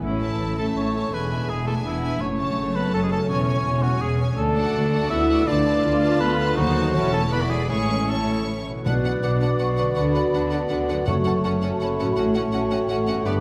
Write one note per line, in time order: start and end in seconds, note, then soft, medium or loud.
0.00 0.35 A1 soft
0.00 1.14 A2 soft
0.00 0.35 A2 soft
0.00 0.54 E3 soft
0.00 0.37 C#4 soft
0.00 0.58 E4 soft
0.00 0.54 E4 soft
0.00 2.23 E5 soft
0.00 0.54 E5 soft
0.20 1.14 E3 soft
0.20 0.57 C#4 soft
0.20 0.57 E5 soft
0.20 0.55 A5 soft
0.39 0.71 A1 soft
0.39 0.72 A2 soft
0.39 1.14 A3 soft
0.39 1.11 A3 soft
0.57 0.76 A3 soft
0.57 0.94 C#4 soft
0.57 0.94 E4 soft
0.57 0.67 A4 soft
0.57 0.94 E5 soft
0.57 0.93 A5 soft
0.57 0.76 A5 soft
0.76 1.08 A1 soft
0.76 1.08 A2 soft
0.76 1.12 C#4 soft
0.76 1.15 A4 soft
0.76 1.15 C#5 soft
0.76 1.13 C#6 soft
0.95 1.13 C#4 soft
0.95 1.66 E4 soft
0.95 1.11 E5 soft
0.95 1.13 A5 soft
1.13 1.45 E1 soft
1.13 1.45 E2 soft
1.13 2.23 E2 soft
1.13 1.86 G#3 soft
1.13 1.48 B3 soft
1.13 1.29 D4 soft
1.13 1.51 B4 soft
1.13 1.30 E5 soft
1.13 1.29 G#5 soft
1.13 1.49 B5 soft
1.30 2.23 B2 soft
1.30 1.65 D4 soft
1.30 1.65 E5 soft
1.30 1.66 G#5 soft
1.49 1.81 E1 soft
1.49 1.81 E2 soft
1.49 1.67 G#3 soft
1.49 2.23 G#3 soft
1.49 1.66 G#4 medium
1.49 1.68 G#5 soft
1.66 1.85 A3 soft
1.66 2.01 D4 soft
1.66 2.02 E4 soft
1.66 1.75 A4 soft
1.66 2.02 E5 soft
1.66 2.02 G#5 soft
1.66 1.85 A5 soft
1.85 2.17 E1 soft
1.85 2.17 E2 soft
1.85 2.21 E3 soft
1.85 2.21 B3 soft
1.85 2.23 E4 soft
1.85 2.23 G#4 soft
1.85 2.21 E5 soft
2.03 2.20 D4 soft
2.03 2.23 E4 soft
2.03 2.21 E5 soft
2.03 2.21 G#5 soft
2.20 2.52 F#1 soft
2.20 2.52 F#2 soft
2.20 3.30 F#2 soft
2.20 2.93 A3 soft
2.20 2.75 C#4 soft
2.20 2.77 C#5 medium
2.20 2.75 C#6 soft
2.39 3.31 C#3 soft
2.39 2.73 C#4 soft
2.39 2.73 C#5 soft
2.39 2.73 A5 soft
2.56 2.88 F#1 soft
2.56 2.88 F#2 soft
2.56 3.30 F#3 soft
2.74 2.93 B3 soft
2.74 3.09 C#4 soft
2.74 3.09 A4 soft
2.74 2.93 B4 medium
2.74 3.10 C#5 soft
2.74 3.10 A5 soft
2.74 2.92 B5 soft
2.92 3.24 F#1 soft
2.92 3.25 F#2 soft
2.92 3.02 A3 soft
2.92 4.37 C#4 soft
2.92 3.30 F#4 soft
2.92 2.98 A4 medium
2.92 3.02 A5 soft
3.02 3.11 G#3 soft
3.02 3.11 G#4 soft
3.02 3.11 G#5 soft
3.10 3.30 A3 soft
3.10 3.28 C#4 soft
3.10 3.30 A4 soft
3.10 3.20 A4 medium
3.10 3.27 C#5 soft
3.10 3.29 A5 soft
3.10 3.29 A5 medium
3.29 3.61 E1 soft
3.29 3.61 E2 soft
3.29 4.39 E2 soft
3.29 3.45 C#4 soft
3.29 3.83 C#4 medium
3.29 3.45 C#5 soft
3.29 3.84 C#5 medium
3.29 3.46 G#5 soft
3.29 3.59 C#6 soft
3.46 4.39 E3 soft
3.46 3.81 C#4 soft
3.46 3.81 C#5 soft
3.46 3.81 G#5 soft
3.65 3.97 E1 soft
3.65 3.97 E2 soft
3.65 4.39 G#3 soft
3.82 4.01 F#3 soft
3.82 4.17 C#4 soft
3.82 4.03 F#4 medium
3.82 4.19 G#4 soft
3.82 4.17 C#5 soft
3.82 3.90 F#5 soft
3.82 4.19 G#5 soft
4.01 4.33 E1 soft
4.01 4.33 E2 soft
4.01 4.20 G#3 soft
4.01 4.39 C#4 soft
4.01 4.19 G#4 soft
4.01 4.19 G#5 soft
4.18 4.37 C#4 soft
4.18 4.39 G#4 soft
4.18 4.37 C#5 soft
4.18 4.38 G#5 soft
4.37 4.70 D2 medium
4.37 5.47 D3 soft
4.37 5.07 A3 medium
4.37 5.09 D4 medium
4.37 5.06 A4 medium
4.37 5.07 A5 medium
4.56 5.65 A3 soft
4.56 4.91 F#4 soft
4.56 4.92 D5 soft
4.56 4.91 F#5 soft
4.74 5.06 D2 medium
4.74 5.06 D2 soft
4.74 6.59 D4 soft
4.92 5.28 F#4 soft
4.92 5.28 A4 soft
4.92 5.28 D5 soft
4.92 5.27 F#5 soft
5.10 5.43 D2 medium
5.10 5.43 D2 soft
5.10 5.48 B3 medium
5.10 5.47 E4 medium
5.10 6.59 D5 soft
5.10 5.49 E5 medium
5.10 5.47 E6 medium
5.28 5.47 F#4 soft
5.28 6.01 A4 soft
5.28 5.47 D5 soft
5.28 5.47 F#5 soft
5.46 5.79 D2 medium
5.46 6.59 D3 medium
5.46 5.84 A3 medium
5.46 6.19 D4 medium
5.46 5.63 F4 soft
5.46 5.63 B4 soft
5.46 6.19 D5 medium
5.46 5.63 A5 soft
5.46 6.21 D6 medium
5.64 7.34 A3 soft
5.64 6.00 F4 soft
5.64 6.00 B4 soft
5.64 6.00 A5 soft
5.83 6.16 D2 medium
5.83 6.59 B3 soft
5.83 6.56 F4 medium
6.01 6.37 F4 soft
6.01 6.38 A4 soft
6.01 6.37 B4 soft
6.01 6.37 A5 soft
6.20 6.53 D2 medium
6.20 6.57 B3 medium
6.20 6.56 B4 medium
6.20 6.59 B4 soft
6.20 6.57 B5 medium
6.38 6.57 F4 medium
6.38 6.76 A4 soft
6.38 6.57 B4 medium
6.38 6.57 A5 soft
6.56 6.92 D#2 medium
6.56 6.92 D#2 soft
6.56 6.96 D#3 medium
6.56 7.13 F#3 medium
6.56 6.94 D#4 medium
6.56 6.91 F#4 medium
6.56 7.12 F#4 medium
6.56 6.91 C5 medium
6.56 7.12 F#5 medium
6.56 6.92 A5 medium
6.76 6.96 F#4 soft
6.76 7.13 A4 soft
6.94 7.70 E1 soft
6.94 7.70 E2 medium
6.94 7.32 E3 soft
6.94 7.32 C#4 medium
6.94 7.31 E4 medium
6.94 7.32 C#5 soft
6.94 7.31 A5 soft
7.13 7.32 A3 medium
7.13 7.50 E4 soft
7.13 7.22 A4 medium
7.13 7.32 A5 soft
7.31 7.72 E3 soft
7.31 7.69 B3 soft
7.31 7.42 B3 medium
7.31 7.68 E4 medium
7.31 7.43 B4 medium
7.31 7.70 D5 medium
7.31 7.70 B5 soft
7.31 7.42 B5 soft
7.41 7.51 F#3 soft
7.41 7.51 F#4 soft
7.41 7.52 F#5 soft
7.50 7.69 G#3 soft
7.50 8.47 E4 soft
7.50 7.69 G#4 soft
7.50 7.72 B4 soft
7.50 7.59 G#5 soft
7.69 8.66 A1 soft
7.69 8.66 A2 soft
7.69 8.87 A2 soft
7.69 8.08 G#3 medium
7.69 8.66 C#4 soft
7.69 8.08 E4 soft
7.69 8.11 G#4 medium
7.69 8.08 C#5 soft
7.69 8.08 G#5 soft
7.69 8.08 C#6 soft
7.90 8.87 E3 soft
8.09 8.47 A3 soft
8.09 8.87 C#4 soft
8.09 8.65 E4 soft
8.09 8.47 A4 soft
8.09 8.65 C#5 soft
8.09 8.47 A5 soft
8.09 8.65 C#6 soft
8.29 8.66 C#5 soft
8.48 8.87 E4 soft
8.67 9.90 B2 soft
8.67 8.87 C#5 soft
8.73 9.82 B3 soft
8.78 9.87 D4 soft
8.82 9.19 B1 soft
8.82 9.18 B2 soft
8.82 9.38 B2 medium
8.82 11.09 B3 soft
8.82 9.93 D4 soft
8.82 8.93 D4 soft
8.82 9.92 F#4 soft
8.82 11.03 F#4 soft
8.82 8.92 B4 soft
8.82 11.03 D5 soft
8.82 8.93 F#5 soft
8.86 9.21 F#6 medium
9.04 9.12 D4 soft
9.04 9.12 B4 soft
9.04 9.12 F#5 soft
9.23 9.55 B1 soft
9.23 9.55 B2 soft
9.23 9.31 D4 soft
9.23 9.30 B4 soft
9.23 9.30 F#5 soft
9.23 9.59 D6 medium
9.41 9.49 D4 soft
9.41 9.49 B4 soft
9.41 9.49 F#5 soft
9.59 9.92 B1 soft
9.59 9.92 B2 soft
9.59 9.67 D4 soft
9.59 9.67 B4 soft
9.59 9.67 F#5 soft
9.59 9.96 C#6 medium
9.76 11.00 D3 soft
9.76 9.86 D4 soft
9.76 9.85 B4 soft
9.76 9.84 F#5 soft
9.84 11.02 B3 soft
9.88 11.04 D4 soft
9.93 10.29 D3 soft
9.93 11.07 B3 soft
9.93 10.04 D4 soft
9.93 11.02 F#4 soft
9.93 10.04 B4 soft
9.93 10.03 F#5 soft
9.97 10.30 D2 soft
9.97 10.52 B5 medium
10.14 10.23 D4 soft
10.14 10.22 B4 soft
10.14 10.22 F#5 soft
10.33 10.66 D2 soft
10.33 10.66 D3 medium
10.33 10.41 D4 soft
10.33 10.41 B4 soft
10.33 10.41 F#5 soft
10.51 10.60 D4 soft
10.51 10.59 B4 soft
10.51 10.58 F#5 soft
10.51 10.70 A5 medium
10.69 11.03 D2 soft
10.69 11.02 D3 soft
10.69 10.78 D4 soft
10.69 10.77 B4 soft
10.69 10.77 F#5 soft
10.69 11.06 F#5 medium
10.89 12.10 F#2 soft
10.89 10.96 D4 soft
10.89 10.96 B4 soft
10.89 10.96 F#5 soft
10.94 12.03 A3 soft
10.98 12.07 C#4 soft
11.03 12.12 F#4 soft
11.03 11.13 F#5 soft
11.03 11.43 C#6 medium
11.07 11.39 F#1 medium
11.07 11.39 F#2 soft
11.07 11.58 F#2 medium
11.07 13.21 A3 soft
11.07 13.40 A3 soft
11.07 11.15 C#4 soft
11.07 13.26 F#4 soft
11.07 13.22 F#4 medium
11.07 11.15 A4 soft
11.07 13.27 C#5 soft
11.24 11.33 C#4 soft
11.24 11.33 A4 soft
11.24 11.32 F#5 soft
11.44 11.76 F#1 soft
11.44 11.76 F#2 soft
11.44 11.52 C#4 soft
11.44 11.52 A4 soft
11.44 11.51 F#5 soft
11.44 11.80 A5 medium
11.61 11.70 C#4 soft
11.61 11.70 A4 soft
11.61 11.69 F#5 soft
11.80 12.13 F#1 soft
11.80 12.13 F#2 soft
11.80 11.88 C#4 soft
11.80 11.88 A4 soft
11.80 11.88 F#5 soft
11.80 12.16 B5 medium
11.99 13.18 A2 soft
11.99 12.07 C#4 soft
11.99 12.07 A4 soft
11.99 12.06 F#5 soft
12.04 13.21 A3 soft
12.08 13.23 C#4 soft
12.13 12.48 A1 soft
12.13 12.48 A2 medium
12.13 13.25 F#4 soft
12.13 12.24 F#5 soft
12.17 12.25 C#4 soft
12.17 12.24 F#4 medium
12.17 12.70 A5 medium
12.35 12.43 C#4 soft
12.35 12.42 F#4 soft
12.35 12.42 F#5 soft
12.52 12.85 A1 soft
12.52 12.85 A2 medium
12.52 12.60 C#4 medium
12.52 12.61 F#4 soft
12.52 12.59 F#5 soft
12.71 12.78 C#4 soft
12.71 12.79 F#4 soft
12.71 12.78 F#5 soft
12.71 12.89 G5 medium
12.89 13.21 A1 medium
12.89 13.21 A2 soft
12.89 12.96 C#4 soft
12.89 12.97 F#4 medium
12.89 12.96 F#5 soft
12.89 13.25 F#5 medium
13.06 13.40 G2 medium
13.06 13.14 C#4 soft
13.06 13.16 F#4 soft
13.06 13.14 F#5 soft
13.12 13.40 B3 soft
13.17 13.40 D4 soft
13.21 13.40 G2 medium
13.21 13.40 D4 medium
13.21 13.40 G4 soft
13.25 13.40 G1 medium
13.25 13.33 B3 medium
13.25 13.40 B3 medium
13.25 13.40 G4 medium
13.25 13.34 G4 medium
13.25 13.40 B4 medium
13.25 13.33 D5 medium
13.25 13.40 D6 medium